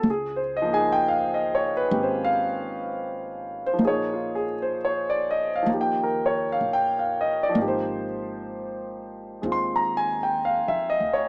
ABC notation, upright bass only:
X:1
M:4/4
L:1/8
Q:"Swing" 1/4=64
K:Dblyd
V:1 name="Upright bass" clef=bass
D,,4 A,,,4 | B,,,4 E,,2 B,,,2 | A,,,4 E,,2- (3E,, F,, =D,, |]